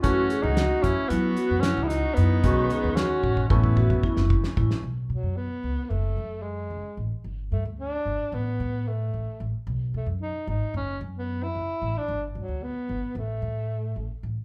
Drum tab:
HH |x-x-x-x-x-x-x-x-x-|x-x-x-------------|------------------|------------------|
SD |----o-------o-o---|----o--------o-o-o|------------------|------------------|
BD |o-----o-----------|o-----ooooooo-o-o-|------------------|------------------|

HH |------------------|------------------|
SD |------------------|------------------|
BD |------------------|------------------|